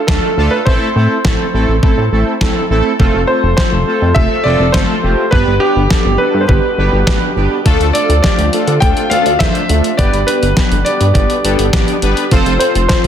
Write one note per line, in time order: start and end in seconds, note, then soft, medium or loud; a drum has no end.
0.07 0.20 D2 loud
0.07 0.30 A3 loud
0.07 0.30 D4 medium
0.07 0.30 F4 medium
0.07 0.48 A4 medium
0.07 0.30 A4 loud
0.07 kick loud
0.07 snare loud
0.37 0.49 D2 medium
0.37 0.59 A3 loud
0.37 0.59 D4 medium
0.37 0.59 F4 medium
0.37 0.59 A4 loud
0.51 0.56 B4 medium
0.65 0.78 A1 loud
0.65 0.88 A3 loud
0.65 0.88 C4 medium
0.65 0.88 E4 medium
0.65 0.88 A4 loud
0.65 2.37 C5 medium
0.65 kick loud
0.96 1.08 A2 loud
0.96 1.18 A3 medium
0.96 1.18 C4 medium
0.96 1.18 E4 medium
0.96 1.18 A4 medium
1.25 1.37 A1 loud
1.25 1.47 A3 medium
1.25 1.47 C4 medium
1.25 1.47 E4 medium
1.25 1.47 A4 medium
1.25 kick loud
1.25 snare loud
1.54 1.66 A1 medium
1.54 1.76 A3 medium
1.54 1.76 C4 medium
1.54 1.76 E4 medium
1.54 1.76 A4 medium
1.68 1.80 A1 loud
1.83 1.95 A1 loud
1.83 2.05 A3 medium
1.83 2.05 C4 medium
1.83 2.05 E4 medium
1.83 2.05 A4 loud
1.83 kick loud
1.98 2.09 A2 medium
2.12 2.24 A1 medium
2.12 2.34 A3 medium
2.12 2.34 C4 medium
2.12 2.34 E4 medium
2.12 2.34 A4 loud
2.41 2.53 A1 loud
2.41 2.63 A3 loud
2.41 2.63 C4 loud
2.41 2.63 E4 loud
2.41 2.63 A4 loud
2.41 kick loud
2.41 snare loud
2.70 2.82 A1 loud
2.70 2.92 A3 loud
2.70 2.92 C4 loud
2.70 2.92 E4 loud
2.70 2.92 A4 loud
3.00 3.11 F1 loud
3.00 5.30 C3 medium
3.00 5.30 F3 medium
3.00 5.30 A3 medium
3.00 3.21 A3 loud
3.00 3.21 C4 loud
3.00 5.30 F4 medium
3.00 3.21 F4 loud
3.00 5.30 A4 medium
3.00 3.21 A4 loud
3.00 kick loud
3.14 3.26 F1 loud
3.27 3.50 A3 medium
3.27 3.50 C4 medium
3.27 3.50 F4 medium
3.27 3.50 A4 medium
3.27 3.55 C5 medium
3.43 3.55 F1 medium
3.57 3.80 A3 medium
3.57 3.80 C4 medium
3.57 3.80 F4 medium
3.57 3.80 A4 medium
3.57 4.12 C5 medium
3.57 kick loud
3.57 snare loud
3.72 3.84 F1 medium
3.87 4.09 A3 medium
3.87 4.09 C4 medium
3.87 4.09 F4 medium
3.87 4.09 A4 medium
4.02 4.13 F2 medium
4.14 4.28 F1 loud
4.14 4.38 A3 medium
4.14 4.38 C4 medium
4.14 4.38 F4 medium
4.14 4.38 A4 medium
4.14 4.45 E5 loud
4.14 kick loud
4.44 4.57 F1 loud
4.44 4.67 A3 medium
4.44 4.67 C4 medium
4.44 4.67 F4 medium
4.44 4.67 A4 loud
4.44 4.74 D5 loud
4.60 4.72 F1 loud
4.72 4.86 G1 medium
4.72 4.96 A3 medium
4.72 4.96 C4 medium
4.72 4.96 F4 medium
4.72 4.96 A4 loud
4.72 5.33 C5 medium
4.72 kick loud
4.72 snare loud
5.03 5.15 F1 medium
5.03 5.25 A3 medium
5.03 5.25 C4 medium
5.03 5.25 F4 medium
5.03 5.25 G4 medium
5.31 5.44 G1 loud
5.31 7.63 B2 medium
5.31 7.63 D3 medium
5.31 7.63 G3 medium
5.31 5.54 B3 loud
5.31 5.54 D4 medium
5.31 12.28 D4 medium
5.31 5.54 G4 medium
5.31 7.63 G4 medium
5.31 5.62 B4 medium
5.31 5.54 B4 loud
5.31 kick loud
5.47 5.59 G1 loud
5.60 5.83 B3 medium
5.60 5.83 D4 medium
5.60 6.15 G4 loud
5.60 5.83 G4 medium
5.60 5.83 B4 medium
5.76 5.88 G1 medium
5.91 6.12 B3 medium
5.91 6.12 D4 medium
5.91 6.12 G4 medium
5.91 6.12 A4 medium
5.91 kick loud
5.91 snare loud
6.05 6.17 G1 loud
6.18 6.42 B3 medium
6.18 6.42 D4 medium
6.18 6.42 G4 medium
6.18 6.42 A4 medium
6.18 6.42 B4 medium
6.34 6.46 G2 loud
6.41 6.48 C5 medium
6.48 6.61 G1 loud
6.48 6.71 B3 medium
6.48 6.71 D4 medium
6.48 6.71 G4 medium
6.48 7.32 B4 medium
6.48 6.71 B4 medium
6.48 kick loud
6.78 6.90 G1 loud
6.78 7.00 B3 loud
6.78 7.00 D4 medium
6.78 7.00 G4 medium
6.78 7.00 B4 loud
6.93 7.05 G1 loud
7.07 7.19 A1 loud
7.07 7.29 B3 medium
7.07 7.29 D4 medium
7.07 7.29 G4 medium
7.07 7.29 B4 loud
7.07 kick loud
7.07 snare loud
7.36 7.48 G1 medium
7.36 7.58 B3 medium
7.36 7.58 D4 medium
7.36 7.58 G4 medium
7.36 7.58 B4 loud
7.65 7.77 D2 loud
7.65 9.96 C3 medium
7.65 9.96 F3 medium
7.65 9.96 A3 medium
7.65 7.87 A3 loud
7.65 7.87 D4 loud
7.65 9.96 F4 medium
7.65 7.87 F4 loud
7.65 7.87 A4 loud
7.65 kick loud
7.65 closed hi-hat medium
7.80 7.92 D2 loud
7.80 closed hi-hat soft
7.93 8.17 A3 medium
7.93 8.17 D4 medium
7.93 8.17 F4 medium
7.93 8.17 A4 medium
7.93 8.21 D5 medium
7.93 closed hi-hat medium
8.09 8.21 D2 loud
8.09 closed hi-hat medium
8.22 8.46 A3 medium
8.22 8.46 D4 medium
8.22 8.46 F4 medium
8.22 8.46 G4 medium
8.22 8.83 D5 medium
8.22 kick loud
8.22 snare loud
8.22 closed hi-hat medium
8.38 8.50 D2 loud
8.38 closed hi-hat medium
8.53 8.75 A3 medium
8.53 8.75 D4 medium
8.53 8.75 F4 medium
8.53 8.75 A4 medium
8.53 closed hi-hat medium
8.67 8.79 D3 medium
8.67 closed hi-hat medium
8.80 8.94 D2 loud
8.80 9.04 A3 medium
8.80 9.04 D4 medium
8.80 9.04 F4 medium
8.80 9.04 A4 medium
8.80 9.08 G5 loud
8.80 kick loud
8.80 closed hi-hat medium
8.97 closed hi-hat soft
9.10 9.23 D2 loud
9.10 9.33 A3 medium
9.10 9.33 D4 medium
9.10 9.33 F4 medium
9.10 9.33 A4 loud
9.10 9.41 F5 loud
9.10 closed hi-hat medium
9.26 9.38 D2 loud
9.26 closed hi-hat medium
9.39 9.52 E2 medium
9.39 9.62 A3 loud
9.39 9.62 D4 medium
9.39 9.62 F4 medium
9.39 9.62 C5 loud
9.39 9.94 E5 medium
9.39 kick loud
9.39 snare loud
9.39 closed hi-hat medium
9.55 closed hi-hat medium
9.69 9.81 D2 medium
9.69 9.91 A3 medium
9.69 9.91 D4 medium
9.69 9.91 F4 medium
9.69 9.91 A4 medium
9.69 closed hi-hat medium
9.84 closed hi-hat medium
9.97 10.10 G1 loud
9.97 12.29 B2 medium
9.97 12.29 D3 medium
9.97 12.29 G3 medium
9.97 10.20 B3 loud
9.97 10.20 D4 medium
9.97 12.29 G4 medium
9.97 10.20 G4 medium
9.97 10.20 B4 loud
9.97 10.28 D5 medium
9.97 kick loud
9.97 closed hi-hat medium
10.13 10.25 G1 medium
10.13 closed hi-hat soft
10.27 10.50 B3 medium
10.27 10.50 D4 medium
10.27 10.50 G4 medium
10.27 10.87 B4 medium
10.27 10.50 B4 medium
10.27 closed hi-hat medium
10.42 10.54 G1 loud
10.42 closed hi-hat medium
10.57 10.79 B3 medium
10.57 10.79 D4 medium
10.57 10.79 G4 medium
10.57 10.79 B4 medium
10.57 kick loud
10.57 snare loud
10.57 closed hi-hat medium
10.72 10.83 G1 loud
10.72 closed hi-hat medium
10.85 11.08 B3 medium
10.85 11.08 D4 medium
10.85 11.08 G4 medium
10.85 11.08 B4 medium
10.85 11.12 D5 medium
10.85 closed hi-hat medium
11.01 11.12 G2 medium
11.01 closed hi-hat medium
11.14 11.27 G1 loud
11.14 11.37 B3 medium
11.14 11.37 D4 medium
11.14 11.37 G4 medium
11.14 11.37 B4 medium
11.14 11.98 D5 medium
11.14 kick loud
11.14 closed hi-hat medium
11.30 closed hi-hat soft
11.44 11.56 G1 loud
11.44 11.66 B3 medium
11.44 11.66 D4 medium
11.44 11.66 G4 medium
11.44 11.66 A4 loud
11.44 closed hi-hat medium
11.59 11.71 G1 medium
11.59 closed hi-hat medium
11.73 11.85 A1 medium
11.73 11.95 B3 medium
11.73 11.95 D4 medium
11.73 11.95 G4 medium
11.73 11.95 D5 loud
11.73 kick loud
11.73 snare loud
11.73 closed hi-hat medium
11.88 closed hi-hat medium
12.02 12.14 G1 medium
12.02 12.24 B3 medium
12.02 12.24 D4 medium
12.02 12.24 G4 medium
12.02 12.24 B4 loud
12.02 closed hi-hat medium
12.17 closed hi-hat medium
12.31 12.43 F1 loud
12.31 13.07 A2 medium
12.31 13.07 C3 medium
12.31 13.07 F3 medium
12.31 13.07 C4 medium
12.31 12.53 C4 loud
12.31 13.07 F4 medium
12.31 12.53 F4 loud
12.31 12.53 A4 loud
12.31 12.53 C5 loud
12.31 kick loud
12.31 closed hi-hat medium
12.46 12.58 F1 loud
12.46 closed hi-hat soft
12.59 12.82 C4 medium
12.59 12.83 F4 medium
12.59 12.82 A4 medium
12.59 12.87 C5 medium
12.59 12.83 C5 medium
12.59 closed hi-hat medium
12.75 12.87 F1 medium
12.75 closed hi-hat medium
12.88 13.07 C4 medium
12.88 13.07 F4 medium
12.88 13.07 A4 medium
12.88 12.95 C5 medium
12.88 13.07 C5 medium
12.88 kick loud
12.88 snare loud
12.88 closed hi-hat medium